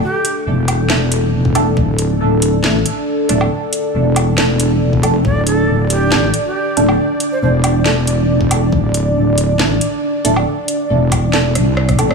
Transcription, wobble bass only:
X:1
M:4/4
L:1/8
Q:"Swing 16ths" 1/4=138
K:Cmix
V:1 name="Wobble bass" clef=bass
z2 E,,,6 | D,,,4 A,,, z2 D,,, | z2 E,,,4- E,,, F,,, | D,,,4 A,,, z2 D,,, |
z2 E,,,6 | D,,,4 A,,, z2 D,,, | z2 E,,,3 C,,2 G,,, |]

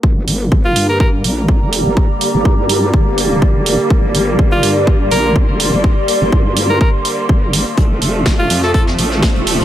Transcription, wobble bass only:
X:1
M:4/4
L:1/16
Q:"Swing 16ths" 1/4=124
K:Gm
V:1 name="Wobble bass" clef=bass
G,,,2 G,,,2 G,,,2 G,,4 B,,,3 F,,,2 G,,,- | G,,, z2 G,,, G,,4 G,,,4 G,,, F,,,2 z | G,,,2 G,,,2 G,,,2 G,,4 B,,,3 F,,,2 G,,,- | G,,, z2 G,,, G,,4 z4 G,,,3 z |
F,,,2 F,,,2 F,,,2 F,,4 A,,,3 E,,,2 F,,, |]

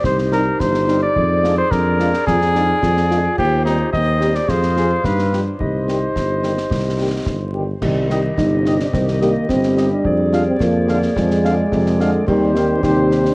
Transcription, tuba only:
X:1
M:2/4
L:1/8
Q:1/4=108
K:Cm
V:1 name="Tuba" clef=bass
C,,2 G,,,2 | F,,2 F,,2 | F,,2 F,,2 | E,,2 E,,2 |
F,,2 G,,2 | C,,2 G,,,2 | C,,2 G,,,2 | C,,2 G,,,2 |
C,,2 G,,,2 | F,,2 F,,2 | F,,2 F,,2 | E,,2 E,,2 |]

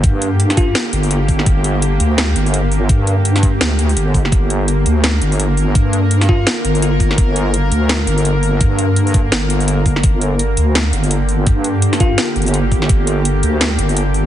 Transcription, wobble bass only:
X:1
M:4/4
L:1/8
Q:"Swing 16ths" 1/4=168
K:Gm
V:1 name="Wobble bass" clef=bass
G,,4 z G,,,3 | G,,,3 D,,2 G,,,3 | G,,4 D,,2 G,,,2 | G,,,3 D,,2 G,,,3 |
G,,4 z G,,,3 | G,,,3 D,,2 G,,,3 | G,,4 G,,,4 | G,,,3 D,,2 G,,,3 |
G,,4 z G,,,3 | G,,,3 D,,2 G,,,3 |]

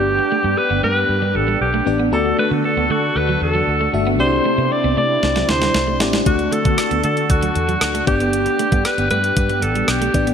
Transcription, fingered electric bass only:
X:1
M:4/4
L:1/16
Q:1/4=116
K:D
V:1 name="Fingered electric bass" clef=bass
G,,,2 z G,, z G,,, G,,2 G,,2 A,,,2 B,,,2 A,,,2 | D,,2 z D, z D,, D,2 D,,2 E,,2 D,,2 G,,,2 | =C,,2 z =C, z C,, C,2 C,,2 D,,2 C,,2 A,,,2 | D,,2 z D, z D,, D,2 D,,2 E,,2 D,,2 G,,,2- |
G,,,2 z G,, z G,,, G,,2 G,,2 A,,,2 B,,,2 A,,,2 |]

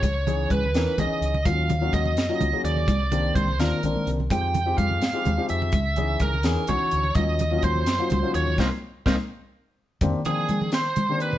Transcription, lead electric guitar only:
X:1
M:6/8
L:1/8
Q:3/8=84
K:Cm
V:1 name="Lead electric guitar"
_d2 _c2 e2 | f2 e3 d- | d2 c B2 z | g2 f3 =e- |
=e2 B2 _d2 | e2 c3 _d | [Bce] z [Bce] z3 | [K:Fm] z A2 c2 =B |]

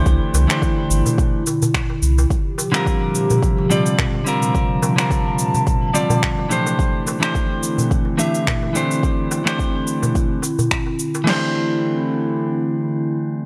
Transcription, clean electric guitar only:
X:1
M:4/4
L:1/16
Q:"Swing 16ths" 1/4=107
K:Cmix
V:1 name="Clean electric guitar"
[E,A,DGc]3 [E,A,DGc]6- [E,A,DGc] z6 | z3 [D,G,CFB]6- [D,G,CFB] [D,G,CFd]4 [D,G,CFB]2- | [D,G,CFB]3 [D,G,CFB]6- [D,G,CFB] [D,G,CFd]4 [E,A,DGc]2- | [E,A,DGc]3 [E,A,DGc]6- [E,A,DGc] [E,A,DGe]4 [E,A,DGc]2- |
[E,A,DGc]3 [E,A,DGc]6- [E,A,DGc] z6 | [E,A,DGc]16 |]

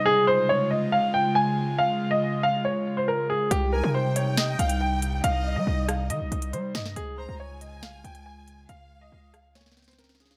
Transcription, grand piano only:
X:1
M:4/4
L:1/16
Q:1/4=139
K:Dblyd
V:1 name="Grand piano"
A2 c2 d2 e2 f2 g2 a4 | f3 e3 f2 d3 c B2 A2 | G2 B2 c2 d2 e2 f2 g4 | f3 e3 f2 e4 c2 e2 |
A2 c2 d2 e2 f2 g2 a4 | f3 e3 f2 d3 c B2 A2 |]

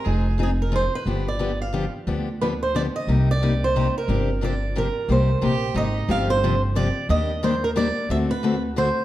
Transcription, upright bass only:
X:1
M:3/4
L:1/8
Q:"Swing" 1/4=179
K:Gphr
V:1 name="Upright bass" clef=bass
F,,,6 | G,,,6 | D,,6 | C,,6 |
G,,,6 | C,,2 B,,,2 A,,,2 | G,,,6 | E,,6 |
D,,6 |]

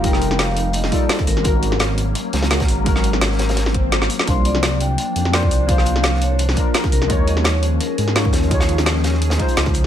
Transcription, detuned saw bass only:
X:1
M:4/4
L:1/8
Q:"Swing 16ths" 1/4=170
K:Cphr
V:1 name="Detuned saw bass" clef=bass
F,,,4- F,,, z2 A,,, | A,,,4 z D,,2 A,,,- | A,,,4- A,,, A,,,2 z | C,,4 z F,,2 C,,- |
C,,4- C,, z2 C,, | E,,4 z A,,2 E,,- | E,,4- E,, z D,,2 |]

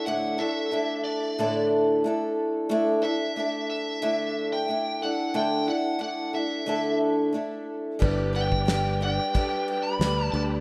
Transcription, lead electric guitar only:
X:1
M:4/4
L:1/16
Q:1/4=90
K:D
V:1 name="Lead electric guitar"
f2 e4 d4 z6 | z2 e4 e4- e g3 f2 | g2 f2 f2 e4 z6 | z2 g4 g4- g b3 a2 |]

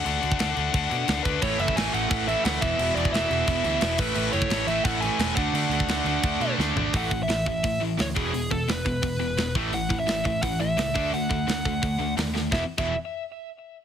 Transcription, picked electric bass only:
X:1
M:4/4
L:1/16
Q:1/4=173
K:A
V:1 name="Picked electric bass" clef=bass
D,,2 D,,2 D,,2 D,,2 D,,2 B,,2 D,,2 D,,2 | A,,,2 F,,,2 A,,,2 A,,,2 A,,,4 D,,2 E,,,2 | E,,,2 E,,,2 E,,,2 E,,,2 E,,,2 D,,2 E,,,2 A,,,2 | A,,,2 F,,,2 A,,,2 A,,,2 A,,,4 E,,,2 D,,2 |
D,,2 D,,2 D,,2 D,,2 D,,2 B,,2 D,,2 G,,,2 | A,,,2 A,,,2 A,,,2 A,,,2 A,,,2 A,,,2 D,,2 E,,,2 | E,,,2 E,,,2 E,,,2 E,,,2 E,,,2 E,,,2 E,,,2 A,,,2 | A,,,2 A,,,2 A,,,2 A,,,2 A,,,2 A,,,2 C,,2 D,,2 |
D,,2 D,,2 D,,2 D,,2 D,,2 D,,2 ^D,,4 | E,,, z2 E,,,2 z8 z3 |]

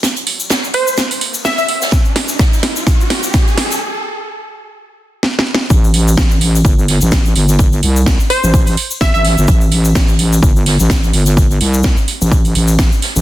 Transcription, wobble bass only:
X:1
M:4/4
L:1/16
Q:"Swing 16ths" 1/4=127
K:Am
V:1 name="Wobble bass" clef=bass
z16 | z16 | z16 | A,,,4 A,,,4 G,,,3 A,,,3 G,,,2- |
G,,,2 C,,3 z2 A,,,3 z2 A,,, A,,,2 G,,, | A,,,4 A,,,4 G,,,3 A,,,3 G,,,2- | G,,,2 C,,3 z2 A,,,3 A,,,3 z2 A,,, |]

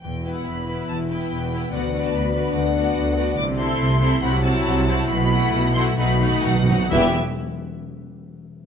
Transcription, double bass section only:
X:1
M:4/4
L:1/8
Q:1/4=139
K:Bphr
V:1 name="Double bass section" clef=bass
E,,,2 E,,,2 E,,,2 E,,,2 | D,,2 D,,2 D,,2 D,,2 | C,,2 C,,2 C,,2 C,,2 | B,,,2 B,,,2 B,,,2 B,,,2 |
E,,, z6 z |]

